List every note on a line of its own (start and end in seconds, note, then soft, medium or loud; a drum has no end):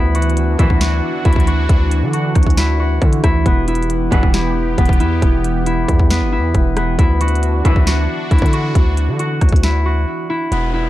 0.00 0.56 D2 loud
0.00 10.48 E3 medium
0.00 2.81 B3 medium
0.00 3.42 D4 medium
0.00 0.59 E4 loud
0.00 3.42 F#4 medium
0.15 0.81 F#4 medium
0.15 closed hi-hat medium
0.22 closed hi-hat medium
0.30 closed hi-hat soft
0.37 closed hi-hat medium
0.59 1.01 D2 loud
0.59 0.78 F#2 loud
0.59 0.78 A2 loud
0.59 0.78 E3 loud
0.59 1.25 E4 medium
0.59 kick loud
0.59 closed hi-hat medium
0.70 kick medium
0.81 1.47 F#4 medium
0.81 snare loud
0.81 closed hi-hat medium
1.25 1.68 D2 loud
1.25 2.57 E4 medium
1.25 kick loud
1.25 closed hi-hat medium
1.33 kick loud
1.33 closed hi-hat medium
1.40 closed hi-hat medium
1.47 2.13 F#4 medium
1.47 closed hi-hat medium
1.69 2.04 D2 loud
1.69 kick loud
1.69 closed hi-hat medium
1.91 closed hi-hat medium
2.02 2.34 D3 loud
2.13 2.79 F#4 medium
2.13 closed hi-hat medium
2.35 2.99 D2 loud
2.35 kick loud
2.35 cross-stick medium
2.35 closed hi-hat medium
2.43 kick medium
2.43 closed hi-hat medium
2.50 closed hi-hat medium
2.57 3.23 E4 medium
2.57 snare loud
2.57 closed hi-hat medium
2.80 5.23 F#4 medium
3.02 3.23 D3 loud
3.02 kick loud
3.02 closed hi-hat soft
3.13 closed hi-hat medium
3.24 3.45 D2 loud
3.24 3.67 E4 loud
3.24 kick medium
3.24 cross-stick loud
3.24 closed hi-hat medium
3.46 4.09 E1 loud
3.46 4.11 B3 medium
3.46 6.95 B3 medium
3.46 6.95 G4 loud
3.46 kick loud
3.46 closed hi-hat medium
3.68 4.34 E4 medium
3.68 closed hi-hat medium
3.75 closed hi-hat medium
3.83 closed hi-hat soft
3.90 closed hi-hat medium
4.12 4.76 E1 loud
4.12 4.31 G2 loud
4.12 4.31 B2 loud
4.12 4.31 E3 loud
4.12 4.78 B3 medium
4.12 kick loud
4.12 closed hi-hat medium
4.23 kick medium
4.34 5.00 E4 medium
4.34 snare loud
4.34 closed hi-hat medium
4.78 5.02 E1 loud
4.78 6.10 B3 loud
4.78 kick loud
4.78 closed hi-hat medium
4.85 kick loud
4.85 closed hi-hat medium
4.93 closed hi-hat medium
5.00 5.21 E2 loud
5.00 5.66 E4 medium
5.00 closed hi-hat medium
5.22 5.86 E1 loud
5.22 kick loud
5.22 closed hi-hat medium
5.44 closed hi-hat medium
5.66 6.32 E4 medium
5.66 closed hi-hat medium
5.88 6.23 E2 loud
5.88 kick loud
5.88 closed hi-hat medium
6.00 kick medium
6.10 6.76 B3 medium
6.10 snare loud
6.10 closed hi-hat medium
6.21 6.40 G1 loud
6.32 6.98 E4 medium
6.38 6.54 E2 loud
6.55 6.97 E1 loud
6.55 kick loud
6.55 closed hi-hat medium
6.77 9.87 B3 medium
6.77 cross-stick loud
6.77 closed hi-hat medium
6.99 7.62 D2 loud
6.99 10.48 D4 medium
6.99 7.65 E4 loud
6.99 10.48 F#4 medium
6.99 kick loud
6.99 closed hi-hat medium
7.21 7.87 F#4 medium
7.21 closed hi-hat medium
7.28 closed hi-hat medium
7.36 closed hi-hat soft
7.43 closed hi-hat medium
7.65 7.76 D2 loud
7.65 7.84 F#2 loud
7.65 7.84 A2 loud
7.65 7.84 E3 loud
7.65 8.31 E4 medium
7.65 kick loud
7.65 closed hi-hat medium
7.76 8.08 D2 loud
7.76 kick medium
7.87 8.53 F#4 medium
7.87 snare loud
7.87 closed hi-hat medium
8.31 8.41 D2 loud
8.31 9.63 E4 medium
8.31 kick loud
8.31 closed hi-hat medium
8.38 8.74 D3 loud
8.38 kick loud
8.38 closed hi-hat medium
8.46 closed hi-hat medium
8.53 9.19 F#4 medium
8.53 closed hi-hat medium
8.75 9.10 D2 loud
8.75 kick loud
8.75 closed hi-hat medium
8.97 closed hi-hat medium
9.08 9.40 D3 loud
9.19 9.85 F#4 medium
9.19 closed hi-hat medium
9.41 9.52 D2 loud
9.41 kick loud
9.41 cross-stick medium
9.41 closed hi-hat medium
9.49 10.05 D2 loud
9.49 kick medium
9.49 closed hi-hat medium
9.56 closed hi-hat medium
9.63 10.29 E4 medium
9.63 snare loud
9.63 closed hi-hat medium
9.86 10.90 F#4 medium
10.30 10.73 E4 loud
10.52 10.90 E1 loud
10.52 10.90 B3 medium
10.52 closed hi-hat medium
10.52 downlifter medium
10.74 10.90 E4 medium